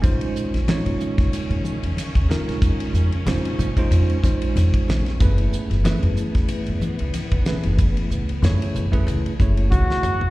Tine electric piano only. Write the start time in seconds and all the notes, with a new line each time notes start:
0.02 G#3 C#4 D#4 F4 C5
0.68 G#3 C#4 D#4 F4 C#5
2.29 G#3 C#4 D#4 F4 A#4
3.26 G#3 C#4 D#4 F4 C5
3.77 G#3 C#4 D#4 F4 C5
4.23 G#3 C#4 D#4 F4 C5
5.20 A3 C#4 E4 G#4 B4
5.84 A3 C#4 E4 G#4 B4
7.47 A3 C#4 E4 G#4 B4
8.42 A3 C#4 E4 G#4 C#5
8.92 A3 C#4 E4 G#4 B4
9.40 A3 C#4 E4 G#4 C#5